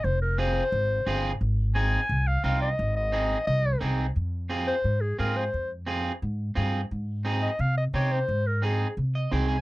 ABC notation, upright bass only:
X:1
M:4/4
L:1/8
Q:1/4=175
K:Fm
V:1 name="Upright bass" clef=bass
F,,,4 A,,,2 G,,,2 | A,,,4 C,,2 C,,2 | A,,,4 C,,2 C,,2 | F,,4 A,,2 A,,2 |
F,,4 A,,2 G,,2 | A,,4 C,2 C,2 | A,,4 C,2 C,,2 |]